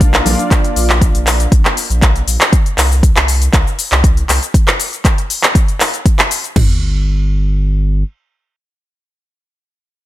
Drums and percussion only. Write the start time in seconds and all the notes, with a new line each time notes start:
0.01 kick, closed hi-hat, cabasa
0.14 clap, closed hi-hat, high bongo, cabasa
0.26 open hi-hat, low bongo, high conga, cabasa
0.39 closed hi-hat, cabasa
0.51 kick, clap, closed hi-hat, cabasa
0.64 closed hi-hat, cabasa
0.76 open hi-hat, cabasa
0.90 clap, cabasa
1.01 kick, closed hi-hat, cabasa
1.15 closed hi-hat, cabasa
1.27 clap, open hi-hat, cabasa
1.40 closed hi-hat, cabasa
1.52 kick, closed hi-hat, cabasa
1.65 clap, cabasa
1.77 open hi-hat, cabasa
1.90 closed hi-hat, cabasa
2.02 kick, clap, closed hi-hat, cabasa
2.16 closed hi-hat, cabasa
2.28 open hi-hat, cabasa
2.41 clap, closed hi-hat, cabasa
2.53 kick, closed hi-hat, cabasa
2.66 closed hi-hat, cabasa
2.78 clap, open hi-hat, cabasa
2.92 cabasa
3.03 kick, closed hi-hat, cabasa
3.16 clap, closed hi-hat, cabasa
3.28 open hi-hat, cabasa
3.42 closed hi-hat, cabasa
3.53 kick, clap, closed hi-hat, cabasa
3.67 cabasa
3.79 open hi-hat, cabasa
3.92 clap, closed hi-hat, cabasa
4.04 kick, closed hi-hat, cabasa
4.17 closed hi-hat, cabasa
4.29 clap, open hi-hat, cabasa
4.42 closed hi-hat, cabasa
4.54 kick, closed hi-hat, cabasa
4.68 clap, closed hi-hat, cabasa
4.80 open hi-hat, cabasa
4.93 closed hi-hat, cabasa
5.05 kick, clap, closed hi-hat, cabasa
5.18 closed hi-hat, cabasa
5.30 open hi-hat, cabasa
5.43 clap, closed hi-hat, cabasa
5.55 kick, closed hi-hat, cabasa
5.68 closed hi-hat, cabasa
5.80 clap, open hi-hat, cabasa
5.94 closed hi-hat, cabasa
6.06 kick, closed hi-hat, cabasa
6.19 clap, closed hi-hat, cabasa
6.31 open hi-hat, cabasa
6.44 closed hi-hat, cabasa
6.56 kick, floor tom, crash